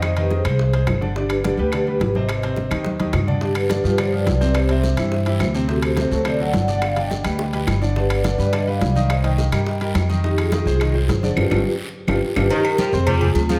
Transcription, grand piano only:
X:1
M:4/4
L:1/8
Q:1/4=212
K:Gphr
V:1 name="Grand piano"
[E,Ee] [E,Ee]2 [A,Ac]2 [A,Ac]2 [D,Dd] | [D,Dd]2 [D,Dd] [G,G=B] [D,Dd] [G,GB]2 [C,Cc]- | [C,Cc] [C,Cc]2 [E,EG]2 [E,EG]2 [D,Dd] | [D,Dd]2 [D,Dd] [F,FG] [D,Dd] [F,FG]2 [C,Cc]- |
[C,Cc] [C,Cc]2 [=E,=EG]2 [E,EG]2 [C,Cc] | [C,Cc]2 [C,Cc] [^F,^F=A] [C,Cc] [F,FA]2 [D,Dd]- | [D,Dd] [D,Dd]2 [G,G=B]2 [G,GB]2 [D,Dd] | [D,Dd]2 [D,Dd] [G,G=B] [D,Dd] [G,GB]2 [E,Ee]- |
[E,Ee] [E,Ee]2 [G,GB]2 [G,GB]2 [E,Ee] | [E,Ee]2 [E,Ee] [A,Ac] [E,Ee] [A,Ac]2 [D,Dd] | [DFG] [DFG] z3 [DFG] z [DFG] | [K:Cm] [E,Ee]2 [G,Gg] [Ccc']2 [A,Aa]2 [F,Ff] |]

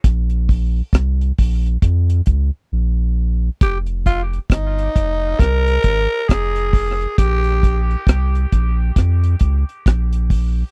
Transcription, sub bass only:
X:1
M:4/4
L:1/16
Q:"Swing 16ths" 1/4=67
K:Fm
V:1 name="Sub bass" clef=bass
B,,,4 C,,2 B,,,2 F,,2 D,, z B,,,4 | F,,,4 G,,,2 F,,,2 C,,2 A,,, z F,,,4 | B,,,4 C,,2 B,,,2 F,,2 D,, z B,,,4 |]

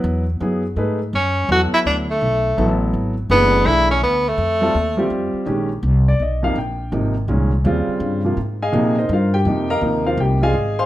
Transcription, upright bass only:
X:1
M:3/4
L:1/8
Q:"Swing" 1/4=166
K:Bdor
V:1 name="Upright bass" clef=bass
E,,2 F,,2 G,,2 | F,,2 E,, z D,,2 | B,,,2 A,,,2 G,,,2 | F,,,2 B,,,2 D,,2 |
=F,,2 _E,,2 F,, z | [K:Bbdor] B,,,2 C,,2 _C,,2 | B,,,2 A,,,2 C,,2 | E,, z G,,2 A,,2 |
B,,2 G,,2 F,,2 | E,,2 C,,2 A,,,2 |]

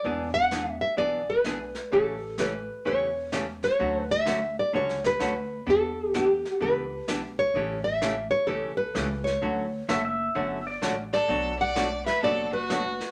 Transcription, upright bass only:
X:1
M:4/4
L:1/8
Q:"Swing" 1/4=128
K:D
V:1 name="Upright bass" clef=bass
E,,,4 B,,,4 | A,,,4 E,,,4 | D,,4 C,,2 D,,2 | E,,4 C,,2 B,,,2 |
A,,,4 B,,,2 C,,2 | D,,2 F,,,2 G,,,2 A,,,2 | B,,,4 F,,,4 |]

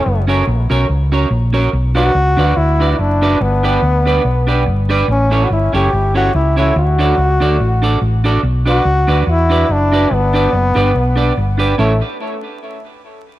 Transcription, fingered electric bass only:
X:1
M:4/4
L:1/8
Q:"Swing" 1/4=143
K:Amix
V:1 name="Fingered electric bass" clef=bass
F,,,2 ^A,,, B,,, C,,2 A,,,2 | B,,,2 C,, D,, D,,2 F,,,2 | G,,,2 D,,2 B,,,2 G,,,2 | A,,,2 G,,, F,,, G,,,2 C,,2 |
D,,2 C,, D,, A,,,2 A,,,2 | B,,,2 C,, D,, E,,2 F,,,2 | G,,,2 F,,, G,,, B,,,2 G,,,2 | A,,, z6 z |]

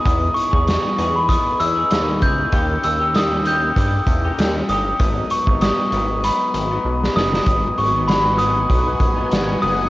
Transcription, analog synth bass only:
X:1
M:4/4
L:1/16
Q:"Swing 16ths" 1/4=97
K:G#m
V:1 name="Analog synth bass" clef=bass
E,,2 z E,,2 z E,,3 z E,,2 D,,2 C,,2 | D,,2 D,,6 =G,,2 E,,2 D,,2 =G,,,2 | G,,,2 z G,,,2 z G,,,3 z G,,,2 B,,,2 F,,,2 | G,,,2 G,,,6 B,,,2 A,,,2 G,,,2 F,,,2 |]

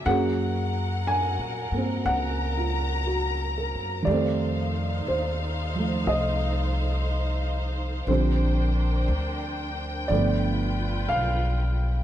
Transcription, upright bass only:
X:1
M:4/4
L:1/8
Q:"Swing" 1/4=60
K:Fmix
V:1 name="Upright bass" clef=bass
_G,,2- (3G,, B,, =G,, _D,,3 _G,, | F,,2 E,,2 C,,4 | B,,,2 D,,2 G,,,2 =B,,,2 |]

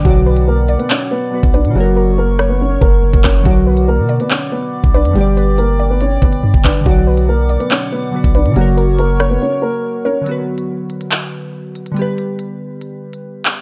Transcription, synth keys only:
X:1
M:4/4
L:1/8
Q:1/4=141
K:Bm
V:1 name="Synth keys"
[B,,D,F,Fd]6 [D,F,B,FB]2 | [C,F,^A,F^A]8 | [B,,D,F,Fd]8 | [B,,D,G,Gd]8 |
[B,,D,F,Fd]6 [D,F,B,FB]2 | [C,F,^A,F^A]8 | [D,F,B,FB]8 | [D,G,B,GB]8 |]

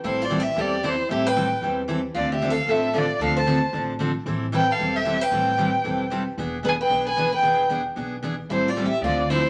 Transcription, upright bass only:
X:1
M:4/4
L:1/8
Q:"Swing" 1/4=227
K:Am
V:1 name="Upright bass" clef=bass
A,,,4 E,,4 | A,,,4 E,,4 | D,,4 A,,,4 | D,,4 A,,,4 |
A,,,4 E,,,4 | A,,,4 E,,,4 | E,,,4 B,,,4 | E,,,4 B,,,4 |
A,,,4 D,,4 |]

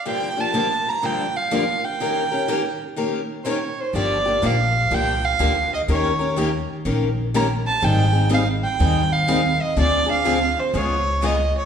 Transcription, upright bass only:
X:1
M:4/4
L:1/8
Q:"Swing" 1/4=124
K:Gm
V:1 name="Upright bass" clef=bass
z8 | z8 | G,,,2 B,,,2 C,,2 D,,2 | E,,4 B,,,4 |
_A,,,4 E,,4 | D,,4 ^C,,4 |]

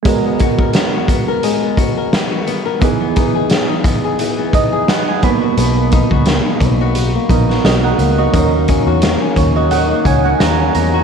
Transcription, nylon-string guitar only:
X:1
M:4/4
L:1/16
Q:"Swing 16ths" 1/4=87
K:G#m
V:1 name="Nylon-string guitar"
G, B, F A B, F B, A G, B, F A B, F B, A | E, B, D G B, D B, G E, B, D G B, D B,, F | B,, A, D F A, D A, F2 A, D F A, D A, F | D, A, C F A, C A, F D, A, C F A, C A, F |]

